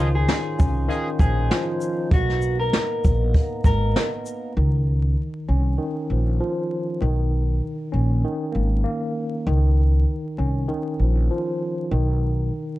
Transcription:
Already playing: upright bass C#2, tine electric piano D#3, tonewheel organ C#4 D#4 F4 C5, clean electric guitar F4
0.15 clean electric guitar G#4
0.28 snare, closed hi-hat
0.59 upright bass C2, tine electric piano C#4, kick, closed hi-hat, shaker
0.88 tine electric piano D#3, horn section F3 D#4 G#4, closed hi-hat
1.19 upright bass A#1, tine electric piano F3, clean electric guitar G#4, kick, closed hi-hat, shaker
1.50 tine electric piano F3, snare, closed hi-hat
1.81 shaker
2.11 upright bass B1, tonewheel organ A#3 B3, clean electric guitar F#4, kick, closed hi-hat
2.29 snare
2.42 shaker
2.59 clean electric guitar A#4
2.73 snare, closed hi-hat
3.05 upright bass A#1, kick, closed hi-hat, shaker
3.34 kick, closed hi-hat
3.64 upright bass G#1, clean electric guitar A#4, kick, closed hi-hat, shaker
3.96 snare, closed hi-hat
4.26 shaker
4.57 upright bass C#2, tine electric piano D#3
5.49 upright bass C2, tine electric piano C#4
5.78 tine electric piano D#3
6.10 upright bass A#1, tine electric piano F3
6.40 tine electric piano F3
7.01 upright bass B1, tine electric piano D#3
7.92 upright bass A#1, tine electric piano C#4
8.24 tine electric piano D#3
8.52 upright bass G#1, tine electric piano A#3
8.84 tine electric piano A#3
9.47 upright bass C#2, tine electric piano D#3
10.38 upright bass C2, tine electric piano C#4
10.68 tine electric piano D#3
10.99 upright bass A#1, tine electric piano F3
11.30 tine electric piano F3
11.91 upright bass B1, tine electric piano D#3

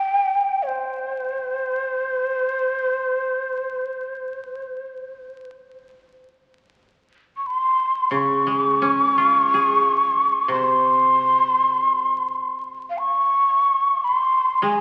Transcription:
Already playing: shakuhachi G5
0.63 shakuhachi C#5
0.67 shakuhachi C5
7.37 shakuhachi C#6
7.46 shakuhachi C6
8.11 koto C#3, shakuhachi C#6
8.47 koto G#3
8.82 koto C#4
9.18 koto F4
9.54 koto G#4
10.48 koto C3, shakuhachi C6
12.90 shakuhachi F5
12.98 shakuhachi C#6
14.04 shakuhachi C6
14.62 koto G#3, shakuhachi G#5

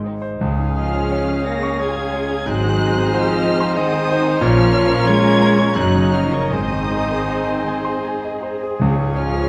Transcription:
Already playing: double bass section G#1, cello section G#2, grand piano G#2 G#3
0.04 violin section G#3 C4 D#4, grand piano D#4
0.22 grand piano C5
0.40 grand piano C#2, double bass section C#2, timpani C#3, violin section G#3 F5, clarinet C#4, viola section C#4 G#4, cor anglais G#4, flute G#5
0.57 grand piano G#2, violin section C#4
0.76 cello section F3, grand piano G#3, violin section F4 F6, french horn section F4
0.92 grand piano C#4, violin section G#4
1.11 violin section F4, grand piano C#5
1.28 violin section C#4, grand piano G#4
1.45 violin section G#3 A#6, cello section A#3, french horn section A#4, grand piano C#5
1.62 violin section C#4, grand piano C#6
1.78 cello section G#3, clarinet C#4, violin section F4 G#6, french horn section G#4, cor anglais G#4, grand piano C#5, flute G#5
1.96 violin section G#4, grand piano G#4
2.13 violin section F4, grand piano C#5
2.29 grand piano C#4, violin section C#4
2.45 double bass section G#1, grand piano G#2, cello section F#3, viola section C4, violin section C4 D#5 F#6, clarinet D#4, french horn section F#4, cor anglais C5, flute G#5
2.64 grand piano D#3, violin section D#4
2.79 grand piano G#3, violin section F#4
2.97 grand piano D#4, violin section G#4
3.11 cello section F3, french horn section F4, violin section F#4 F6, grand piano C5
3.28 violin section D#4, grand piano G#4
3.44 violin section C4, grand piano D#5
3.60 violin section D#4, grand piano C6
3.76 cello section D#3, clarinet D#4, french horn section D#4, violin section F#4 D#6, cor anglais C5, grand piano D#5, flute G#5
3.91 violin section G#4, grand piano G#4
4.08 violin section F#4, grand piano C5
4.25 violin section D#4, grand piano D#4
4.40 double bass section A#1, grand piano A#2, cello section F3, violin section A#3 F6, viola section C#4 F4, clarinet F4, french horn section F4, cor anglais C#5, flute A#5
4.57 grand piano F3, violin section C#4
4.72 grand piano C#4, violin section F4
4.88 violin section A#4, grand piano A#4
5.05 cello section G#3, violin section F4 C#5 G#6, french horn section G#4, grand piano C#5
5.21 violin section C#4, grand piano A#4
5.38 violin section A#3, grand piano A#5
5.57 violin section C#4, grand piano C#6
5.75 double bass section F#1, grand piano F#2, cello section F#3, violin section C#4 D#5 F#6, clarinet D#4, french horn section F#4, cor anglais C#5, flute A#5
5.79 viola section D#4
5.93 grand piano C#3, violin section D#4
6.12 cello section F3, grand piano D#4, french horn section F4, violin section F#4 F6
6.29 cello section C#3, french horn section C#4, violin section A#4 C#6
6.33 grand piano A#4
6.49 double bass section G#1, timpani G#2, grand piano G#2, cello section D#3, violin section G#3 D#6, clarinet D#4, french horn section D#4, cor anglais C5, flute G#5
6.53 viola section C4 G#4
6.71 grand piano D#3, violin section C4
6.88 violin section D#4, grand piano D#4
7.08 violin section G#4, grand piano G#4
7.28 violin section D#4, grand piano C5
7.46 violin section C4, grand piano D#5
7.66 violin section G#3, grand piano G#5
7.84 violin section C4, grand piano C6
8.03 violin section D#4, grand piano G#5
8.23 violin section G#4, grand piano D#5
8.40 violin section D#4, grand piano C5
8.60 violin section C4, grand piano G#4
8.78 double bass section C#2, grand piano C#2, timpani C#3, violin section G#3 C#5, clarinet C#4, viola section C#4, cor anglais C#5, flute G#5
8.96 grand piano G#2, violin section C#4
9.15 cello section F3, grand piano C#4, violin section F4 F6, french horn section F4
9.33 grand piano G#4, violin section G#4

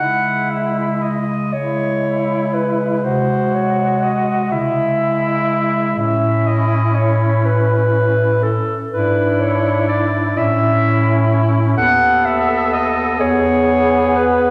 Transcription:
Already playing: bass clarinet C#3, tenor saxophone G#3
0.00 alto saxophone E4, clarinet F#5
0.51 clarinet E5
1.02 clarinet D#5
1.53 tenor saxophone G#3, alto saxophone E4, clarinet C#5
2.54 clarinet B4
3.03 bass clarinet C3, tenor saxophone G#3, alto saxophone F#4, clarinet C5
3.55 clarinet C#5
4.04 clarinet D#5
4.51 bass clarinet C#3, tenor saxophone G#3, alto saxophone E4, clarinet E5
5.96 bass clarinet A2, tenor saxophone C#4, alto saxophone E4, clarinet E5
6.47 clarinet D#5
6.95 clarinet C#5
7.46 clarinet B4
8.43 clarinet A4
8.90 bass clarinet G#2, tenor saxophone D4, alto saxophone E4, clarinet B4
9.40 clarinet C#5
9.89 clarinet D5
10.35 bass clarinet A2, tenor saxophone C#4, alto saxophone E4, clarinet E5
11.77 bass clarinet D#2, tenor saxophone B3, alto saxophone A4, clarinet F#5
12.26 clarinet E5
12.73 clarinet D#5
13.19 bass clarinet E2, tenor saxophone B3, alto saxophone G#4, clarinet C#5
14.16 clarinet B4

